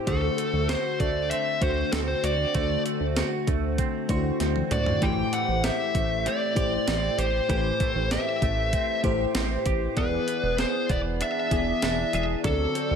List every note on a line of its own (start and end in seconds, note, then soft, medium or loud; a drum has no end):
0.00 0.73 C4 medium
0.07 0.29 D2 loud
0.07 0.96 D3 medium
0.07 0.88 A3 medium
0.07 0.38 A3 medium
0.07 0.89 D4 medium
0.07 0.89 F#4 medium
0.07 0.68 F#4 medium
0.07 0.69 A4 medium
0.07 0.89 C5 medium
0.07 kick medium
0.07 closed hi-hat medium
0.38 1.00 A3 medium
0.38 closed hi-hat medium
0.53 0.76 D2 medium
0.69 1.61 F#4 medium
0.69 0.98 C5 medium
0.69 snare loud
0.69 closed hi-hat medium
1.00 1.33 D2 loud
1.00 2.54 A3 medium
1.00 1.30 D5 medium
1.00 kick medium
1.00 closed hi-hat medium
1.30 1.93 C4 medium
1.30 1.63 E5 medium
1.30 closed hi-hat medium
1.61 1.84 D2 medium
1.61 2.23 A3 medium
1.61 2.23 D4 medium
1.61 2.23 F#4 medium
1.61 1.92 C5 medium
1.61 2.23 C5 medium
1.61 kick medium
1.61 closed hi-hat medium
1.92 2.15 D2 medium
1.92 3.78 C4 medium
1.92 1.98 A4 medium
1.92 snare loud
1.92 closed hi-hat medium
2.08 2.24 C5 medium
2.23 2.46 D2 medium
2.23 2.54 F#4 medium
2.23 2.82 D5 medium
2.23 closed hi-hat medium
2.55 2.77 D2 loud
2.55 3.44 D3 medium
2.55 3.36 A3 medium
2.55 2.85 A3 medium
2.55 3.36 D4 medium
2.55 3.16 F#4 medium
2.55 3.36 F#4 medium
2.55 3.37 C5 medium
2.55 kick loud
2.55 closed hi-hat medium
2.86 3.48 A3 medium
2.86 closed hi-hat medium
3.00 3.23 D2 medium
3.16 4.09 F#4 medium
3.16 snare medium
3.16 closed hi-hat medium
3.47 3.81 D2 medium
3.47 5.33 A3 medium
3.47 kick medium
3.47 closed hi-hat medium
3.78 4.40 C4 medium
3.78 kick medium
3.78 closed hi-hat medium
4.09 4.31 D2 medium
4.09 4.70 A3 medium
4.09 4.70 D4 medium
4.09 4.16 E4 medium
4.09 4.70 F#4 medium
4.09 4.71 C5 medium
4.09 kick medium
4.09 closed hi-hat medium
4.16 4.74 F#4 medium
4.40 4.62 D2 loud
4.40 6.25 C4 medium
4.40 snare soft
4.40 closed hi-hat medium
4.56 high tom medium
4.71 4.93 D2 medium
4.71 5.02 F#4 medium
4.71 5.03 D5 medium
4.71 closed hi-hat medium
4.71 mid tom medium
4.86 floor tom medium
5.01 5.24 A1 loud
5.01 5.91 A2 medium
5.01 7.49 E3 medium
5.01 5.83 A3 medium
5.01 5.83 E4 medium
5.01 5.83 G4 medium
5.01 5.63 G4 medium
5.01 5.84 C5 medium
5.01 5.31 G5 medium
5.01 kick loud
5.01 closed hi-hat medium
5.33 5.94 A3 medium
5.33 5.62 F#5 medium
5.33 closed hi-hat medium
5.48 5.71 A1 loud
5.64 6.55 G4 medium
5.64 6.28 E5 medium
5.64 snare loud
5.64 closed hi-hat medium
5.95 6.28 A1 medium
5.95 7.80 A3 medium
5.95 kick medium
5.95 closed hi-hat medium
6.25 6.86 C4 medium
6.25 7.19 D5 medium
6.25 closed hi-hat medium
6.55 6.79 A1 medium
6.55 7.17 A3 medium
6.55 7.17 E4 medium
6.55 7.17 G4 medium
6.55 7.18 C5 medium
6.55 kick medium
6.55 closed hi-hat medium
6.87 7.10 A1 loud
6.87 8.72 C4 medium
6.87 snare loud
6.87 closed hi-hat medium
7.18 7.41 A1 loud
7.18 7.48 G4 medium
7.18 7.48 C5 medium
7.18 closed hi-hat medium
7.49 7.72 A1 loud
7.49 8.38 A2 medium
7.49 10.99 E3 medium
7.49 8.30 A3 medium
7.49 8.30 E4 medium
7.49 8.31 G4 medium
7.49 8.10 G4 medium
7.49 7.56 B4 medium
7.49 8.12 C5 medium
7.49 kick medium
7.49 closed hi-hat medium
7.56 8.34 C5 medium
7.80 8.41 A3 medium
7.80 kick medium
7.80 closed hi-hat medium
7.96 8.18 A1 medium
8.11 9.03 G4 medium
8.11 9.00 E5 medium
8.11 snare medium
8.11 closed hi-hat medium
8.42 8.76 A1 loud
8.42 9.96 A3 medium
8.42 kick medium
8.42 closed hi-hat medium
8.73 9.34 C4 medium
8.73 kick medium
8.73 closed hi-hat medium
9.03 9.26 A1 medium
9.03 9.65 A3 medium
9.03 9.65 E4 medium
9.03 9.65 G4 medium
9.03 9.65 C5 medium
9.03 kick medium
9.03 closed hi-hat medium
9.35 9.57 A1 medium
9.35 10.03 C4 medium
9.35 snare loud
9.35 closed hi-hat medium
9.66 9.88 A1 loud
9.66 9.97 G4 medium
9.66 kick medium
9.66 closed hi-hat medium
9.96 10.19 E1 loud
9.96 10.86 E3 medium
9.96 10.78 B3 medium
9.96 10.27 B3 medium
9.96 10.78 E4 medium
9.96 10.78 G#4 medium
9.96 10.58 G#4 medium
9.96 10.55 B4 medium
9.96 10.78 D5 medium
9.96 kick loud
9.96 closed hi-hat medium
10.28 10.88 B3 medium
10.28 closed hi-hat medium
10.43 10.65 E1 medium
10.58 11.51 G#4 medium
10.58 10.91 C5 medium
10.58 snare loud
10.58 closed hi-hat medium
10.89 11.23 E1 loud
10.89 12.50 B3 medium
10.89 10.99 D5 medium
10.89 kick medium
10.89 closed hi-hat medium
11.21 11.82 D4 medium
11.21 12.13 E5 loud
11.21 closed hi-hat medium
11.51 11.74 E1 loud
11.51 12.12 B3 medium
11.51 12.12 E4 medium
11.51 12.13 G#4 medium
11.51 12.12 G#4 medium
11.51 12.13 D5 medium
11.51 kick medium
11.51 closed hi-hat medium
11.82 12.05 E1 loud
11.82 12.78 D4 medium
11.82 snare loud
11.82 closed hi-hat medium
12.13 12.36 E1 medium
12.13 12.44 G#4 medium
12.13 12.23 E5 medium
12.13 closed hi-hat medium
12.44 12.67 D2 loud
12.44 12.96 D3 medium
12.44 12.96 F#3 medium
12.44 12.96 C4 medium
12.44 12.96 F#4 medium
12.44 12.96 A4 medium
12.44 12.96 D5 medium
12.44 kick loud
12.44 closed hi-hat medium
12.75 12.96 C4 medium
12.75 closed hi-hat medium
12.91 12.96 D2 loud